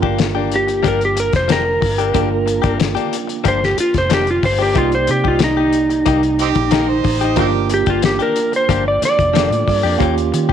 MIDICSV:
0, 0, Header, 1, 9, 480
1, 0, Start_track
1, 0, Key_signature, -2, "minor"
1, 0, Tempo, 653595
1, 1578, Time_signature, 4, 2, 24, 8
1, 7732, End_track
2, 0, Start_track
2, 0, Title_t, "Electric slide guitar"
2, 0, Program_c, 0, 29
2, 408, Note_on_c, 0, 67, 74
2, 626, Note_off_c, 0, 67, 0
2, 644, Note_on_c, 0, 70, 73
2, 750, Note_off_c, 0, 70, 0
2, 770, Note_on_c, 0, 67, 69
2, 870, Note_off_c, 0, 67, 0
2, 880, Note_on_c, 0, 70, 76
2, 988, Note_off_c, 0, 70, 0
2, 998, Note_on_c, 0, 72, 74
2, 1104, Note_off_c, 0, 72, 0
2, 1116, Note_on_c, 0, 70, 81
2, 2038, Note_off_c, 0, 70, 0
2, 2557, Note_on_c, 0, 72, 84
2, 2667, Note_off_c, 0, 72, 0
2, 2677, Note_on_c, 0, 67, 67
2, 2783, Note_off_c, 0, 67, 0
2, 2793, Note_on_c, 0, 65, 75
2, 2904, Note_off_c, 0, 65, 0
2, 2922, Note_on_c, 0, 72, 70
2, 3026, Note_off_c, 0, 72, 0
2, 3039, Note_on_c, 0, 67, 81
2, 3147, Note_off_c, 0, 67, 0
2, 3162, Note_on_c, 0, 65, 68
2, 3265, Note_off_c, 0, 65, 0
2, 3271, Note_on_c, 0, 72, 74
2, 3383, Note_off_c, 0, 72, 0
2, 3395, Note_on_c, 0, 67, 73
2, 3502, Note_off_c, 0, 67, 0
2, 3509, Note_on_c, 0, 65, 87
2, 3622, Note_off_c, 0, 65, 0
2, 3633, Note_on_c, 0, 72, 79
2, 3741, Note_off_c, 0, 72, 0
2, 3751, Note_on_c, 0, 67, 82
2, 3863, Note_off_c, 0, 67, 0
2, 3876, Note_on_c, 0, 65, 70
2, 3982, Note_off_c, 0, 65, 0
2, 3995, Note_on_c, 0, 63, 90
2, 5396, Note_off_c, 0, 63, 0
2, 5682, Note_on_c, 0, 67, 83
2, 5789, Note_off_c, 0, 67, 0
2, 5800, Note_on_c, 0, 65, 79
2, 5904, Note_off_c, 0, 65, 0
2, 5914, Note_on_c, 0, 67, 81
2, 6024, Note_off_c, 0, 67, 0
2, 6039, Note_on_c, 0, 70, 90
2, 6262, Note_off_c, 0, 70, 0
2, 6288, Note_on_c, 0, 72, 74
2, 6507, Note_off_c, 0, 72, 0
2, 6521, Note_on_c, 0, 74, 76
2, 6624, Note_off_c, 0, 74, 0
2, 6648, Note_on_c, 0, 74, 82
2, 7331, Note_off_c, 0, 74, 0
2, 7732, End_track
3, 0, Start_track
3, 0, Title_t, "Harmonica"
3, 0, Program_c, 1, 22
3, 4710, Note_on_c, 1, 60, 68
3, 4710, Note_on_c, 1, 63, 68
3, 4710, Note_on_c, 1, 67, 98
3, 4766, Note_off_c, 1, 60, 0
3, 4775, Note_off_c, 1, 63, 0
3, 4946, Note_on_c, 1, 70, 80
3, 4957, Note_off_c, 1, 67, 0
3, 5066, Note_on_c, 1, 72, 75
3, 5077, Note_off_c, 1, 70, 0
3, 5410, Note_off_c, 1, 72, 0
3, 5431, Note_on_c, 1, 60, 60
3, 5431, Note_on_c, 1, 63, 60
3, 5431, Note_on_c, 1, 67, 85
3, 5479, Note_off_c, 1, 60, 0
3, 5482, Note_off_c, 1, 63, 0
3, 5657, Note_off_c, 1, 67, 0
3, 7732, End_track
4, 0, Start_track
4, 0, Title_t, "Tine electric piano"
4, 0, Program_c, 2, 4
4, 0, Note_on_c, 2, 58, 68
4, 0, Note_on_c, 2, 62, 59
4, 0, Note_on_c, 2, 65, 67
4, 0, Note_on_c, 2, 70, 81
4, 1543, Note_off_c, 2, 58, 0
4, 1546, Note_off_c, 2, 62, 0
4, 1546, Note_off_c, 2, 65, 0
4, 1547, Note_off_c, 2, 70, 0
4, 1574, Note_on_c, 2, 58, 59
4, 1577, Note_on_c, 2, 62, 54
4, 1578, Note_on_c, 2, 65, 57
4, 1584, Note_on_c, 2, 70, 64
4, 3466, Note_off_c, 2, 58, 0
4, 3468, Note_off_c, 2, 62, 0
4, 3468, Note_off_c, 2, 65, 0
4, 3471, Note_off_c, 2, 70, 0
4, 3490, Note_on_c, 2, 58, 58
4, 3492, Note_on_c, 2, 74, 55
4, 3494, Note_on_c, 2, 63, 53
4, 3498, Note_on_c, 2, 67, 62
4, 5384, Note_off_c, 2, 58, 0
4, 5385, Note_off_c, 2, 74, 0
4, 5386, Note_off_c, 2, 63, 0
4, 5388, Note_off_c, 2, 67, 0
4, 5405, Note_on_c, 2, 58, 72
4, 5407, Note_on_c, 2, 62, 65
4, 5409, Note_on_c, 2, 65, 62
4, 5411, Note_on_c, 2, 70, 79
4, 6822, Note_off_c, 2, 58, 0
4, 6823, Note_off_c, 2, 62, 0
4, 6824, Note_off_c, 2, 65, 0
4, 6825, Note_off_c, 2, 70, 0
4, 6850, Note_on_c, 2, 58, 44
4, 6850, Note_on_c, 2, 65, 43
4, 6853, Note_on_c, 2, 62, 42
4, 6853, Note_on_c, 2, 69, 52
4, 7320, Note_off_c, 2, 58, 0
4, 7323, Note_off_c, 2, 65, 0
4, 7328, Note_on_c, 2, 61, 66
4, 7329, Note_on_c, 2, 58, 68
4, 7332, Note_on_c, 2, 65, 60
4, 7333, Note_on_c, 2, 67, 76
4, 7334, Note_off_c, 2, 62, 0
4, 7335, Note_off_c, 2, 69, 0
4, 7732, Note_off_c, 2, 58, 0
4, 7732, Note_off_c, 2, 61, 0
4, 7732, Note_off_c, 2, 65, 0
4, 7732, Note_off_c, 2, 67, 0
4, 7732, End_track
5, 0, Start_track
5, 0, Title_t, "Clean electric guitar"
5, 0, Program_c, 3, 27
5, 18, Note_on_c, 3, 67, 53
5, 33, Note_on_c, 3, 62, 52
5, 42, Note_on_c, 3, 58, 51
5, 134, Note_off_c, 3, 58, 0
5, 136, Note_off_c, 3, 62, 0
5, 137, Note_off_c, 3, 67, 0
5, 255, Note_on_c, 3, 67, 50
5, 267, Note_on_c, 3, 62, 48
5, 278, Note_on_c, 3, 58, 42
5, 400, Note_off_c, 3, 67, 0
5, 406, Note_off_c, 3, 62, 0
5, 412, Note_off_c, 3, 58, 0
5, 607, Note_on_c, 3, 53, 72
5, 612, Note_on_c, 3, 58, 74
5, 616, Note_on_c, 3, 62, 76
5, 621, Note_on_c, 3, 67, 89
5, 730, Note_off_c, 3, 67, 0
5, 735, Note_off_c, 3, 53, 0
5, 736, Note_off_c, 3, 62, 0
5, 737, Note_off_c, 3, 58, 0
5, 1086, Note_on_c, 3, 53, 51
5, 1098, Note_on_c, 3, 58, 61
5, 1103, Note_on_c, 3, 62, 64
5, 1110, Note_on_c, 3, 67, 68
5, 1200, Note_off_c, 3, 67, 0
5, 1208, Note_off_c, 3, 62, 0
5, 1214, Note_off_c, 3, 53, 0
5, 1214, Note_off_c, 3, 58, 0
5, 1457, Note_on_c, 3, 67, 53
5, 1467, Note_on_c, 3, 62, 43
5, 1478, Note_on_c, 3, 58, 39
5, 1563, Note_off_c, 3, 58, 0
5, 1569, Note_on_c, 3, 53, 69
5, 1570, Note_off_c, 3, 62, 0
5, 1571, Note_off_c, 3, 67, 0
5, 1572, Note_on_c, 3, 58, 71
5, 1579, Note_on_c, 3, 62, 73
5, 1580, Note_on_c, 3, 67, 82
5, 1686, Note_off_c, 3, 67, 0
5, 1693, Note_off_c, 3, 62, 0
5, 1694, Note_off_c, 3, 58, 0
5, 1696, Note_off_c, 3, 53, 0
5, 1923, Note_on_c, 3, 67, 58
5, 1935, Note_on_c, 3, 62, 54
5, 1947, Note_on_c, 3, 58, 50
5, 2037, Note_off_c, 3, 58, 0
5, 2043, Note_off_c, 3, 62, 0
5, 2047, Note_off_c, 3, 67, 0
5, 2166, Note_on_c, 3, 67, 57
5, 2177, Note_on_c, 3, 62, 48
5, 2186, Note_on_c, 3, 58, 47
5, 2315, Note_off_c, 3, 67, 0
5, 2321, Note_off_c, 3, 62, 0
5, 2325, Note_off_c, 3, 58, 0
5, 2526, Note_on_c, 3, 53, 75
5, 2528, Note_on_c, 3, 58, 70
5, 2536, Note_on_c, 3, 62, 82
5, 2540, Note_on_c, 3, 67, 89
5, 2640, Note_off_c, 3, 67, 0
5, 2650, Note_off_c, 3, 62, 0
5, 2654, Note_off_c, 3, 53, 0
5, 2654, Note_off_c, 3, 58, 0
5, 3007, Note_on_c, 3, 53, 59
5, 3018, Note_on_c, 3, 58, 66
5, 3023, Note_on_c, 3, 62, 62
5, 3033, Note_on_c, 3, 67, 66
5, 3129, Note_off_c, 3, 67, 0
5, 3134, Note_off_c, 3, 53, 0
5, 3136, Note_off_c, 3, 62, 0
5, 3140, Note_off_c, 3, 58, 0
5, 3368, Note_on_c, 3, 67, 52
5, 3381, Note_on_c, 3, 62, 47
5, 3389, Note_on_c, 3, 58, 45
5, 3475, Note_off_c, 3, 58, 0
5, 3483, Note_on_c, 3, 58, 70
5, 3489, Note_off_c, 3, 67, 0
5, 3491, Note_off_c, 3, 62, 0
5, 3494, Note_on_c, 3, 63, 69
5, 3497, Note_on_c, 3, 67, 83
5, 3599, Note_off_c, 3, 67, 0
5, 3611, Note_off_c, 3, 63, 0
5, 3613, Note_off_c, 3, 58, 0
5, 3849, Note_on_c, 3, 67, 57
5, 3869, Note_on_c, 3, 63, 43
5, 3972, Note_off_c, 3, 63, 0
5, 3972, Note_off_c, 3, 67, 0
5, 4090, Note_on_c, 3, 67, 54
5, 4113, Note_on_c, 3, 63, 39
5, 4237, Note_off_c, 3, 67, 0
5, 4248, Note_off_c, 3, 63, 0
5, 4447, Note_on_c, 3, 58, 70
5, 4456, Note_on_c, 3, 63, 80
5, 4464, Note_on_c, 3, 67, 83
5, 4565, Note_off_c, 3, 67, 0
5, 4575, Note_off_c, 3, 58, 0
5, 4575, Note_off_c, 3, 63, 0
5, 4931, Note_on_c, 3, 58, 64
5, 4941, Note_on_c, 3, 63, 72
5, 4952, Note_on_c, 3, 67, 71
5, 5045, Note_off_c, 3, 67, 0
5, 5056, Note_off_c, 3, 58, 0
5, 5056, Note_off_c, 3, 63, 0
5, 5295, Note_on_c, 3, 67, 58
5, 5318, Note_on_c, 3, 63, 48
5, 5414, Note_on_c, 3, 53, 83
5, 5415, Note_off_c, 3, 67, 0
5, 5420, Note_on_c, 3, 58, 79
5, 5422, Note_off_c, 3, 63, 0
5, 5425, Note_on_c, 3, 62, 81
5, 5428, Note_on_c, 3, 67, 82
5, 5529, Note_off_c, 3, 67, 0
5, 5537, Note_off_c, 3, 62, 0
5, 5538, Note_off_c, 3, 53, 0
5, 5541, Note_off_c, 3, 58, 0
5, 5779, Note_on_c, 3, 67, 54
5, 5789, Note_on_c, 3, 62, 48
5, 5798, Note_on_c, 3, 58, 41
5, 5887, Note_off_c, 3, 58, 0
5, 5893, Note_off_c, 3, 62, 0
5, 5897, Note_off_c, 3, 67, 0
5, 6015, Note_on_c, 3, 67, 53
5, 6028, Note_on_c, 3, 62, 50
5, 6039, Note_on_c, 3, 58, 40
5, 6159, Note_off_c, 3, 67, 0
5, 6166, Note_off_c, 3, 62, 0
5, 6171, Note_off_c, 3, 58, 0
5, 6380, Note_on_c, 3, 53, 77
5, 6385, Note_on_c, 3, 58, 87
5, 6390, Note_on_c, 3, 62, 80
5, 6395, Note_on_c, 3, 67, 78
5, 6492, Note_off_c, 3, 67, 0
5, 6496, Note_off_c, 3, 62, 0
5, 6501, Note_off_c, 3, 53, 0
5, 6501, Note_off_c, 3, 58, 0
5, 6856, Note_on_c, 3, 53, 61
5, 6866, Note_on_c, 3, 58, 59
5, 6871, Note_on_c, 3, 62, 59
5, 6882, Note_on_c, 3, 67, 65
5, 6979, Note_off_c, 3, 53, 0
5, 6979, Note_off_c, 3, 67, 0
5, 6984, Note_off_c, 3, 58, 0
5, 6986, Note_off_c, 3, 62, 0
5, 7222, Note_on_c, 3, 67, 55
5, 7238, Note_on_c, 3, 62, 51
5, 7245, Note_on_c, 3, 58, 45
5, 7333, Note_off_c, 3, 58, 0
5, 7338, Note_off_c, 3, 67, 0
5, 7342, Note_on_c, 3, 58, 81
5, 7346, Note_off_c, 3, 62, 0
5, 7354, Note_on_c, 3, 61, 78
5, 7362, Note_on_c, 3, 67, 88
5, 7455, Note_off_c, 3, 67, 0
5, 7462, Note_off_c, 3, 58, 0
5, 7468, Note_off_c, 3, 61, 0
5, 7703, Note_on_c, 3, 67, 54
5, 7732, Note_off_c, 3, 67, 0
5, 7732, End_track
6, 0, Start_track
6, 0, Title_t, "Fingered electric bass"
6, 0, Program_c, 4, 33
6, 24, Note_on_c, 4, 31, 77
6, 590, Note_off_c, 4, 31, 0
6, 624, Note_on_c, 4, 31, 90
6, 964, Note_off_c, 4, 31, 0
6, 980, Note_on_c, 4, 29, 78
6, 1318, Note_off_c, 4, 29, 0
6, 1342, Note_on_c, 4, 31, 81
6, 1567, Note_off_c, 4, 31, 0
6, 1578, Note_on_c, 4, 31, 106
6, 1921, Note_off_c, 4, 31, 0
6, 1937, Note_on_c, 4, 31, 90
6, 2166, Note_off_c, 4, 31, 0
6, 2535, Note_on_c, 4, 31, 91
6, 2763, Note_off_c, 4, 31, 0
6, 2898, Note_on_c, 4, 29, 94
6, 3237, Note_off_c, 4, 29, 0
6, 3259, Note_on_c, 4, 31, 83
6, 3485, Note_off_c, 4, 31, 0
6, 3494, Note_on_c, 4, 36, 97
6, 3723, Note_off_c, 4, 36, 0
6, 3738, Note_on_c, 4, 48, 84
6, 3851, Note_off_c, 4, 48, 0
6, 3856, Note_on_c, 4, 36, 84
6, 4426, Note_off_c, 4, 36, 0
6, 4456, Note_on_c, 4, 36, 95
6, 4799, Note_off_c, 4, 36, 0
6, 4820, Note_on_c, 4, 34, 84
6, 5158, Note_off_c, 4, 34, 0
6, 5176, Note_on_c, 4, 33, 83
6, 5404, Note_off_c, 4, 33, 0
6, 5417, Note_on_c, 4, 31, 96
6, 5760, Note_off_c, 4, 31, 0
6, 5779, Note_on_c, 4, 31, 90
6, 6006, Note_off_c, 4, 31, 0
6, 6382, Note_on_c, 4, 31, 91
6, 6606, Note_off_c, 4, 31, 0
6, 6745, Note_on_c, 4, 29, 88
6, 6969, Note_off_c, 4, 29, 0
6, 6980, Note_on_c, 4, 45, 82
6, 7085, Note_off_c, 4, 45, 0
6, 7105, Note_on_c, 4, 43, 77
6, 7211, Note_off_c, 4, 43, 0
6, 7224, Note_on_c, 4, 41, 74
6, 7327, Note_off_c, 4, 41, 0
6, 7348, Note_on_c, 4, 39, 97
6, 7570, Note_off_c, 4, 39, 0
6, 7592, Note_on_c, 4, 51, 89
6, 7700, Note_off_c, 4, 51, 0
6, 7708, Note_on_c, 4, 39, 74
6, 7732, Note_off_c, 4, 39, 0
6, 7732, End_track
7, 0, Start_track
7, 0, Title_t, "Muted clean electric guitar strokes"
7, 139, Note_on_c, 9, 29, 47
7, 213, Note_off_c, 9, 29, 0
7, 495, Note_on_c, 9, 29, 38
7, 568, Note_off_c, 9, 29, 0
7, 739, Note_on_c, 9, 29, 40
7, 813, Note_off_c, 9, 29, 0
7, 851, Note_on_c, 9, 29, 36
7, 925, Note_off_c, 9, 29, 0
7, 1209, Note_on_c, 9, 29, 45
7, 1282, Note_off_c, 9, 29, 0
7, 1329, Note_on_c, 9, 29, 35
7, 1402, Note_off_c, 9, 29, 0
7, 1694, Note_on_c, 9, 29, 47
7, 1768, Note_off_c, 9, 29, 0
7, 1806, Note_on_c, 9, 29, 40
7, 1880, Note_off_c, 9, 29, 0
7, 2044, Note_on_c, 9, 29, 43
7, 2117, Note_off_c, 9, 29, 0
7, 2405, Note_on_c, 9, 29, 41
7, 2478, Note_off_c, 9, 29, 0
7, 2649, Note_on_c, 9, 29, 42
7, 2722, Note_off_c, 9, 29, 0
7, 2769, Note_on_c, 9, 29, 38
7, 2842, Note_off_c, 9, 29, 0
7, 3137, Note_on_c, 9, 29, 40
7, 3211, Note_off_c, 9, 29, 0
7, 3254, Note_on_c, 9, 29, 39
7, 3327, Note_off_c, 9, 29, 0
7, 3608, Note_on_c, 9, 29, 43
7, 3682, Note_off_c, 9, 29, 0
7, 3729, Note_on_c, 9, 29, 37
7, 3803, Note_off_c, 9, 29, 0
7, 3972, Note_on_c, 9, 29, 38
7, 4046, Note_off_c, 9, 29, 0
7, 4330, Note_on_c, 9, 29, 37
7, 4403, Note_off_c, 9, 29, 0
7, 4574, Note_on_c, 9, 29, 45
7, 4647, Note_off_c, 9, 29, 0
7, 4692, Note_on_c, 9, 29, 39
7, 4765, Note_off_c, 9, 29, 0
7, 5054, Note_on_c, 9, 29, 46
7, 5127, Note_off_c, 9, 29, 0
7, 5170, Note_on_c, 9, 29, 45
7, 5243, Note_off_c, 9, 29, 0
7, 5538, Note_on_c, 9, 29, 40
7, 5611, Note_off_c, 9, 29, 0
7, 5653, Note_on_c, 9, 29, 38
7, 5726, Note_off_c, 9, 29, 0
7, 5895, Note_on_c, 9, 29, 37
7, 5968, Note_off_c, 9, 29, 0
7, 6258, Note_on_c, 9, 29, 41
7, 6332, Note_off_c, 9, 29, 0
7, 6501, Note_on_c, 9, 29, 39
7, 6574, Note_off_c, 9, 29, 0
7, 6624, Note_on_c, 9, 29, 35
7, 6698, Note_off_c, 9, 29, 0
7, 6988, Note_on_c, 9, 29, 38
7, 7062, Note_off_c, 9, 29, 0
7, 7110, Note_on_c, 9, 29, 42
7, 7183, Note_off_c, 9, 29, 0
7, 7464, Note_on_c, 9, 29, 48
7, 7537, Note_off_c, 9, 29, 0
7, 7581, Note_on_c, 9, 29, 43
7, 7654, Note_off_c, 9, 29, 0
7, 7732, End_track
8, 0, Start_track
8, 0, Title_t, "Muted fingered electric bass strokes"
8, 6622, Note_on_c, 9, 29, 38
8, 6696, Note_off_c, 9, 29, 0
8, 7732, End_track
9, 0, Start_track
9, 0, Title_t, "Drums"
9, 22, Note_on_c, 9, 36, 82
9, 95, Note_off_c, 9, 36, 0
9, 136, Note_on_c, 9, 42, 71
9, 146, Note_on_c, 9, 38, 96
9, 209, Note_off_c, 9, 42, 0
9, 219, Note_off_c, 9, 38, 0
9, 379, Note_on_c, 9, 42, 56
9, 452, Note_off_c, 9, 42, 0
9, 501, Note_on_c, 9, 42, 35
9, 574, Note_off_c, 9, 42, 0
9, 619, Note_on_c, 9, 42, 72
9, 620, Note_on_c, 9, 36, 84
9, 693, Note_off_c, 9, 36, 0
9, 693, Note_off_c, 9, 42, 0
9, 743, Note_on_c, 9, 42, 35
9, 816, Note_off_c, 9, 42, 0
9, 857, Note_on_c, 9, 42, 61
9, 930, Note_off_c, 9, 42, 0
9, 975, Note_on_c, 9, 42, 34
9, 980, Note_on_c, 9, 36, 80
9, 984, Note_on_c, 9, 38, 33
9, 1048, Note_off_c, 9, 42, 0
9, 1053, Note_off_c, 9, 36, 0
9, 1058, Note_off_c, 9, 38, 0
9, 1093, Note_on_c, 9, 42, 84
9, 1103, Note_on_c, 9, 38, 110
9, 1167, Note_off_c, 9, 42, 0
9, 1176, Note_off_c, 9, 38, 0
9, 1338, Note_on_c, 9, 36, 76
9, 1338, Note_on_c, 9, 46, 73
9, 1412, Note_off_c, 9, 36, 0
9, 1412, Note_off_c, 9, 46, 0
9, 1461, Note_on_c, 9, 42, 37
9, 1534, Note_off_c, 9, 42, 0
9, 1574, Note_on_c, 9, 42, 78
9, 1577, Note_on_c, 9, 36, 107
9, 1648, Note_off_c, 9, 42, 0
9, 1650, Note_off_c, 9, 36, 0
9, 1818, Note_on_c, 9, 42, 58
9, 1891, Note_off_c, 9, 42, 0
9, 1934, Note_on_c, 9, 42, 40
9, 1938, Note_on_c, 9, 36, 84
9, 2008, Note_off_c, 9, 42, 0
9, 2011, Note_off_c, 9, 36, 0
9, 2054, Note_on_c, 9, 42, 80
9, 2063, Note_on_c, 9, 38, 103
9, 2127, Note_off_c, 9, 42, 0
9, 2137, Note_off_c, 9, 38, 0
9, 2177, Note_on_c, 9, 42, 38
9, 2251, Note_off_c, 9, 42, 0
9, 2298, Note_on_c, 9, 42, 60
9, 2371, Note_off_c, 9, 42, 0
9, 2418, Note_on_c, 9, 42, 38
9, 2491, Note_off_c, 9, 42, 0
9, 2532, Note_on_c, 9, 42, 79
9, 2535, Note_on_c, 9, 36, 84
9, 2605, Note_off_c, 9, 42, 0
9, 2609, Note_off_c, 9, 36, 0
9, 2669, Note_on_c, 9, 38, 33
9, 2743, Note_off_c, 9, 38, 0
9, 2775, Note_on_c, 9, 42, 68
9, 2848, Note_off_c, 9, 42, 0
9, 2893, Note_on_c, 9, 42, 36
9, 2897, Note_on_c, 9, 36, 79
9, 2903, Note_on_c, 9, 38, 30
9, 2966, Note_off_c, 9, 42, 0
9, 2970, Note_off_c, 9, 36, 0
9, 2976, Note_off_c, 9, 38, 0
9, 3011, Note_on_c, 9, 42, 82
9, 3020, Note_on_c, 9, 38, 110
9, 3084, Note_off_c, 9, 42, 0
9, 3094, Note_off_c, 9, 38, 0
9, 3135, Note_on_c, 9, 42, 39
9, 3208, Note_off_c, 9, 42, 0
9, 3254, Note_on_c, 9, 46, 77
9, 3255, Note_on_c, 9, 36, 77
9, 3327, Note_off_c, 9, 46, 0
9, 3328, Note_off_c, 9, 36, 0
9, 3489, Note_on_c, 9, 42, 77
9, 3494, Note_on_c, 9, 36, 103
9, 3563, Note_off_c, 9, 42, 0
9, 3567, Note_off_c, 9, 36, 0
9, 3612, Note_on_c, 9, 42, 37
9, 3686, Note_off_c, 9, 42, 0
9, 3726, Note_on_c, 9, 42, 57
9, 3799, Note_off_c, 9, 42, 0
9, 3854, Note_on_c, 9, 36, 80
9, 3928, Note_off_c, 9, 36, 0
9, 3959, Note_on_c, 9, 42, 75
9, 3968, Note_on_c, 9, 38, 106
9, 4032, Note_off_c, 9, 42, 0
9, 4042, Note_off_c, 9, 38, 0
9, 4205, Note_on_c, 9, 42, 60
9, 4279, Note_off_c, 9, 42, 0
9, 4335, Note_on_c, 9, 42, 36
9, 4408, Note_off_c, 9, 42, 0
9, 4449, Note_on_c, 9, 42, 77
9, 4454, Note_on_c, 9, 36, 81
9, 4522, Note_off_c, 9, 42, 0
9, 4527, Note_off_c, 9, 36, 0
9, 4576, Note_on_c, 9, 42, 37
9, 4649, Note_off_c, 9, 42, 0
9, 4693, Note_on_c, 9, 42, 59
9, 4767, Note_off_c, 9, 42, 0
9, 4810, Note_on_c, 9, 42, 35
9, 4816, Note_on_c, 9, 36, 79
9, 4883, Note_off_c, 9, 42, 0
9, 4890, Note_off_c, 9, 36, 0
9, 4927, Note_on_c, 9, 42, 81
9, 4937, Note_on_c, 9, 38, 110
9, 5001, Note_off_c, 9, 42, 0
9, 5010, Note_off_c, 9, 38, 0
9, 5171, Note_on_c, 9, 46, 71
9, 5175, Note_on_c, 9, 36, 78
9, 5245, Note_off_c, 9, 46, 0
9, 5249, Note_off_c, 9, 36, 0
9, 5293, Note_on_c, 9, 42, 38
9, 5366, Note_off_c, 9, 42, 0
9, 5406, Note_on_c, 9, 42, 74
9, 5414, Note_on_c, 9, 36, 104
9, 5480, Note_off_c, 9, 42, 0
9, 5487, Note_off_c, 9, 36, 0
9, 5651, Note_on_c, 9, 42, 61
9, 5725, Note_off_c, 9, 42, 0
9, 5774, Note_on_c, 9, 42, 39
9, 5779, Note_on_c, 9, 36, 82
9, 5847, Note_off_c, 9, 42, 0
9, 5852, Note_off_c, 9, 36, 0
9, 5893, Note_on_c, 9, 42, 82
9, 5903, Note_on_c, 9, 38, 102
9, 5966, Note_off_c, 9, 42, 0
9, 5976, Note_off_c, 9, 38, 0
9, 6020, Note_on_c, 9, 42, 37
9, 6093, Note_off_c, 9, 42, 0
9, 6138, Note_on_c, 9, 42, 66
9, 6211, Note_off_c, 9, 42, 0
9, 6265, Note_on_c, 9, 42, 37
9, 6339, Note_off_c, 9, 42, 0
9, 6382, Note_on_c, 9, 36, 84
9, 6382, Note_on_c, 9, 42, 79
9, 6455, Note_off_c, 9, 36, 0
9, 6456, Note_off_c, 9, 42, 0
9, 6627, Note_on_c, 9, 42, 66
9, 6636, Note_on_c, 9, 38, 35
9, 6700, Note_off_c, 9, 42, 0
9, 6710, Note_off_c, 9, 38, 0
9, 6748, Note_on_c, 9, 36, 81
9, 6753, Note_on_c, 9, 42, 40
9, 6821, Note_off_c, 9, 36, 0
9, 6827, Note_off_c, 9, 42, 0
9, 6868, Note_on_c, 9, 42, 85
9, 6878, Note_on_c, 9, 38, 116
9, 6942, Note_off_c, 9, 42, 0
9, 6951, Note_off_c, 9, 38, 0
9, 6994, Note_on_c, 9, 42, 40
9, 7068, Note_off_c, 9, 42, 0
9, 7106, Note_on_c, 9, 36, 75
9, 7113, Note_on_c, 9, 46, 73
9, 7179, Note_off_c, 9, 36, 0
9, 7186, Note_off_c, 9, 46, 0
9, 7347, Note_on_c, 9, 36, 100
9, 7349, Note_on_c, 9, 42, 79
9, 7421, Note_off_c, 9, 36, 0
9, 7423, Note_off_c, 9, 42, 0
9, 7474, Note_on_c, 9, 42, 39
9, 7547, Note_off_c, 9, 42, 0
9, 7592, Note_on_c, 9, 42, 62
9, 7665, Note_off_c, 9, 42, 0
9, 7707, Note_on_c, 9, 36, 85
9, 7732, Note_off_c, 9, 36, 0
9, 7732, End_track
0, 0, End_of_file